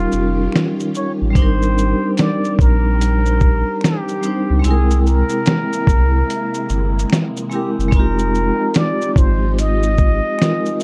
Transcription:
Already playing: string machine D#3 C#4 F4 G4, vibraphone G3 C#4 D#4 F4 A#4, muted trumpet F4
0.12 sub bass F1, shaker
0.52 finger snap, snare, closed hi-hat, shaker
0.80 shaker
0.95 muted trumpet C#5, shaker
1.22 sub bass A1
1.31 vibraphone G3 C4
1.35 sub bass G#1, string machine G3 C4 G4, vibraphone D4 D#4, muted trumpet C5, kick, closed hi-hat, shaker
1.42 vibraphone A#4
1.62 shaker
1.78 shaker
2.17 muted trumpet D5, finger snap, snare, closed hi-hat, shaker
2.45 shaker
2.59 sub bass A#1, muted trumpet A#4, kick, shaker
3.01 closed hi-hat, shaker
3.26 shaker
3.41 kick, shaker
3.81 muted trumpet G4, finger snap, snare, closed hi-hat, shaker
4.08 shaker
4.21 vibraphone G3 C4 D4, shaker
4.26 vibraphone D#4 C5
4.50 sub bass C#2
4.59 string machine C3 G#3 E4, vibraphone G#3 C4
4.63 sub bass C2, string machine A#3, vibraphone E4, muted trumpet G#4, closed hi-hat, shaker
4.68 vibraphone A#4 G5
4.91 shaker
5.07 muted trumpet A#4, shaker
5.29 shaker
5.46 finger snap, snare, closed hi-hat, shaker
5.73 shaker
5.87 sub bass C2, kick, shaker
6.30 closed hi-hat, shaker
6.54 shaker
6.69 sub bass G1, shaker
6.99 shaker
7.10 finger snap, snare, closed hi-hat, shaker
7.37 shaker
7.50 vibraphone G#3 C4 E4, shaker
7.54 vibraphone G4 A#4, muted trumpet G4
7.79 sub bass F#1, shaker
7.88 vibraphone G#3 C4, kick
7.92 sub bass F1, string machine F3 D#4 G4, vibraphone D#4, muted trumpet A#4, closed hi-hat, shaker
7.97 vibraphone F4 G4
8.19 shaker
8.35 shaker
8.74 muted trumpet D5, finger snap, snare, closed hi-hat, shaker
9.01 shaker
9.16 sub bass G#1, muted trumpet C5, kick, shaker
9.59 muted trumpet D#5, closed hi-hat, shaker
9.83 shaker
9.98 kick, shaker
10.38 vibraphone G#3 C4 D#4, finger snap, snare
10.42 vibraphone F4 A#4, closed hi-hat, shaker
10.66 shaker
10.80 shaker

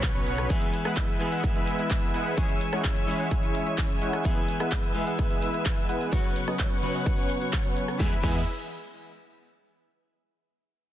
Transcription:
Already playing: analog synth bass B1, clean electric guitar C#3 F#3 B3 F#4, string section B4 C#5 F#5 C#6
0.03 kick, clap, closed hi-hat
0.15 analog synth bass B1, supersaw synth F#3 B3 C#4 B4 C#5, closed hi-hat
0.27 analog synth bass B1, supersaw synth F#3 B3 C#4 B4 C#5, open hi-hat
0.38 cross-stick, closed hi-hat
0.49 clean electric guitar E3 G#3 B3 G#4, supersaw synth G#3 B3 E4 B4 E5, string section E5 G#5 E6, kick, closed hi-hat, cabasa
0.62 closed hi-hat, cabasa
0.73 open hi-hat, cabasa
0.85 supersaw synth G#3 B3 E4 B4 F#5, cross-stick, closed hi-hat, cabasa
0.97 supersaw synth G#3 B3 E4 B4 E5, kick, clap, closed hi-hat, cabasa
1.09 closed hi-hat, cabasa
1.19 clean electric guitar E3 G#3 B3 G#4, supersaw synth G#3 B3 E4 B4 E5, open hi-hat, cabasa
1.32 supersaw synth G#3 B3 E4 B4 F#5, closed hi-hat, cabasa
1.44 supersaw synth E4 E5, kick, closed hi-hat, cabasa
1.56 supersaw synth G#3 B3 E4 B4 E5, closed hi-hat, cabasa
1.67 open hi-hat, cabasa
1.79 supersaw synth G#3 B3 E4 B4 E5, closed hi-hat, cabasa
1.91 supersaw synth E4 B4 E5, kick, clap, closed hi-hat, cabasa
2.02 closed hi-hat, cabasa
2.14 supersaw synth G#3 B3 E4 B4 F#5, open hi-hat, cabasa
2.26 closed hi-hat, cabasa
2.36 clean electric guitar E3 G#3 C#4 G#4, supersaw synth G#3 C#4 E4 C#5 E5, string section C#5, kick, closed hi-hat, cabasa
2.49 closed hi-hat, cabasa
2.61 open hi-hat, cabasa
2.73 supersaw synth G#3 C#4 E4 C#5 F#5, cross-stick, closed hi-hat, cabasa
2.84 supersaw synth G#3, kick, clap, closed hi-hat, cabasa
2.96 closed hi-hat, cabasa
3.07 clean electric guitar E3 G#3 C#4 G#4, supersaw synth G#3 C#4 E4 C#5 E5, open hi-hat, cabasa
3.20 supersaw synth G#3 C#4 E4 C#5 F#5, closed hi-hat, cabasa
3.31 supersaw synth G#3 C#4 E4 C#5 E5, kick, closed hi-hat, cabasa
3.43 supersaw synth G#3 C#4 E4 C#5 E5, closed hi-hat, cabasa
3.55 open hi-hat, cabasa
3.67 supersaw synth G#3 C#4 E4 C#5 E5, closed hi-hat, cabasa
3.78 supersaw synth G#3 C#4, kick, clap, closed hi-hat, cabasa
3.90 closed hi-hat, cabasa
4.02 supersaw synth G#3 C#4 E4 C#5 F#5, open hi-hat, cabasa
4.13 cross-stick, closed hi-hat, cabasa
4.24 clean electric guitar E3 G#3 B3 G#4, supersaw synth B3 E4 B4 E5, string section B4 E6, kick, closed hi-hat, cabasa
4.37 closed hi-hat, cabasa
4.49 open hi-hat, cabasa
4.60 supersaw synth G#3 B3 E4 B4 F#5, cross-stick, closed hi-hat, cabasa
4.72 kick, clap, closed hi-hat, cabasa
4.84 closed hi-hat, cabasa
4.94 clean electric guitar E3 G#3 B3 G#4, supersaw synth G#3 B3 E4 B4 E5, open hi-hat, cabasa
5.07 supersaw synth G#3 B3 E4 B4 F#5, closed hi-hat, cabasa
5.19 supersaw synth G#3 B3 E4 B4 E5, kick, closed hi-hat, cabasa
5.31 supersaw synth G#3 B3 E4 B4 E5, closed hi-hat, cabasa
5.42 open hi-hat, cabasa
5.54 supersaw synth G#3 B3 E4 B4 E5, closed hi-hat, cabasa
5.66 supersaw synth G#3, kick, clap, closed hi-hat, cabasa
5.77 closed hi-hat, cabasa
5.89 supersaw synth G#3 B3 E4 B4 F#5, open hi-hat, cabasa
6.01 closed hi-hat, cabasa
6.11 clean electric guitar C#3 F#3 B3 F#4, supersaw synth F#3 B3 C#4 B4 C#5, string section C#5 F#5 C#6, kick, closed hi-hat, cabasa
6.24 closed hi-hat, cabasa
6.36 open hi-hat, cabasa
6.48 supersaw synth F#3 B3 C#4 B4 D#5, cross-stick, closed hi-hat, cabasa
6.59 supersaw synth F#3 B3 C#4 B4 C#5, kick, clap, closed hi-hat, cabasa
6.71 closed hi-hat, cabasa
6.82 clean electric guitar C#3 F#3 B3 F#4, supersaw synth F#3 B3 C#4 B4 C#5, open hi-hat, cabasa
6.95 supersaw synth F#3 B3 C#4 B4 D#5, closed hi-hat, cabasa
7.06 supersaw synth F#3 B3 C#4 B4 C#5, kick, closed hi-hat, cabasa
7.18 supersaw synth F#3 B3 C#4 B4 C#5, closed hi-hat, cabasa
7.30 supersaw synth F#3 B3 C#4 B4 C#5, open hi-hat, cabasa
7.41 supersaw synth F#3 B3 C#4 B4 C#5, closed hi-hat, cabasa
7.53 kick, clap, closed hi-hat, cabasa
7.65 supersaw synth F#3 B3 C#4 B4 C#5, closed hi-hat, cabasa
7.77 supersaw synth F#3 B3 C#4 B4 C#5, open hi-hat, cabasa
7.88 cross-stick, closed hi-hat, cabasa
7.98 analog synth bass E2, clean electric guitar E3 G#3 B3 G#4, string section E3 E4 B4 G#5 B5, supersaw synth G#3 B3 E4 B4 E5, kick, snare
8.22 analog synth bass E2, clean electric guitar E3 G#3 B3 G#4, supersaw synth G#3 B3 E4 B4 E5, kick, crash

